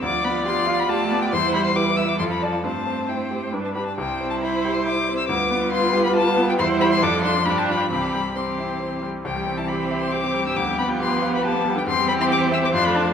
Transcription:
<<
  \new Staff \with { instrumentName = "Violin" } { \time 3/4 \key c \major \tempo 4 = 138 d'''8 b''8 c'''8. b''16 a''8. g''16 | c'''8 b''16 c'''16 d'''8 e'''16 d'''16 c'''16 b''16 a''8 | a''4 g''4 r16 a''16 b''16 a''16 | g''8. a''16 b''8. c'''16 d'''8. e'''16 |
d'''4 c'''8. b''16 a''8. g''16 | c'''8 b''16 c'''16 d'''8 c'''8 b''16 a''16 b''8 | b''4 c'''4. r8 | g''8. a''16 b''8. c'''16 d'''8. e'''16 |
d'''8 b''8 c'''8. b''16 a''8. g''16 | c'''8 b''16 c'''16 d'''8 e'''16 d'''16 c'''16 b''16 a''8 | }
  \new Staff \with { instrumentName = "Violin" } { \time 3/4 \key c \major d''2 d''4 | c''4 b'4 a'4 | c''2 b'8 r8 | c''2. |
b'2. | c''4 a'4 g'4 | g'4 g'4. r8 | g'2.~ |
g'2. | g'2 f'4 | }
  \new Staff \with { instrumentName = "Grand piano" } { \time 3/4 \key c \major d,8 b8 g'8 f''8 g'8 b8 | e,8 g8 g'8 e''8 f,8 <f' d''>8 | g,8 c'8 e'8 g'8 g,8 <d' g'>8 | c,8 c'8 e'8 g'8 e'8 c'8 |
d,8 b8 f'8 g'8 f'8 b8 | e,8 <e' g'>8 f,8 <d' f'>8 g,8 <d' f'>8 | c,8 g8 c'8 e'8 c'8 g8 | c,16 g16 c'16 e'16 g'16 c''16 e''16 c''16 g'16 c'16 g16 g,16 |
d,16 g16 b16 f'16 g'16 b'16 f''16 b'16 g'16 b16 g16 d16 | e,16 g16 c'16 e'16 g'16 c''16 e''16 c''16 f,16 a16 d'16 a16 | }
  \new Staff \with { instrumentName = "Viola" } { \time 3/4 \key c \major f'2. | e'4 e'4 f'4 | c'2 d'8 r8 | e'2. |
f'2. | e'4 d'4 d'4 | c'4 c'4. r8 | c'2. |
b2. | c'2 d'4 | }
  \new Staff \with { instrumentName = "Cello" } { \clef bass \time 3/4 \key c \major f4 f4 a4 | g2 f4 | a2 g8 r8 | g2. |
g2. | g4 f4 f4 | e4 e4. r8 | e2. |
f2. | e2 f4 | }
>>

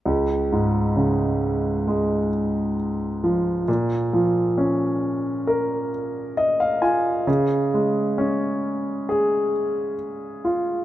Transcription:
<<
  \new Staff \with { instrumentName = "Grand piano" } { \time 4/4 \key des \major \tempo 4 = 66 r1 | r2. ees''16 f''16 aes''8 | r1 | }
  \new Staff \with { instrumentName = "Grand piano" } { \clef bass \time 4/4 \key des \major des,8 aes,8 des4 aes4. f8 | bes,8 f8 des'4 bes'4. f'8 | des8 aes8 des'4 aes'4. f'8 | }
>>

